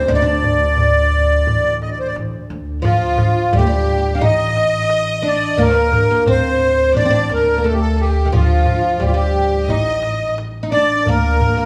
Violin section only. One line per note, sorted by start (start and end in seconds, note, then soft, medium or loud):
2.85 3.49 F4 medium
3.55 4.22 G4 medium
4.22 5.59 D#5 loud
5.60 6.28 A#4 medium
6.28 6.92 C5 medium
6.95 7.29 D5 medium
7.30 7.62 A#4 medium
7.64 7.78 A4 medium
7.79 7.98 A4 medium
7.97 8.32 G4 medium
8.31 9.00 F4 medium
9.00 9.12 G4 medium
9.13 9.65 G4 medium
9.67 10.37 D#5 medium
10.71 11.04 D5 medium
11.07 11.65 A#4 medium